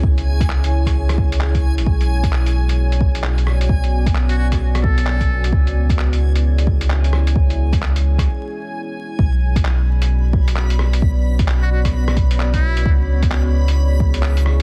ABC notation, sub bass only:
X:1
M:4/4
L:1/16
Q:"Swing 16ths" 1/4=131
K:Bdor
V:1 name="Sub bass" clef=bass
C,,12- C,,3 G,,, | B,,,16 | B,,,16 | C,,16 |
C,,8 z8 | B,,,16 | B,,,16 | C,,16 |]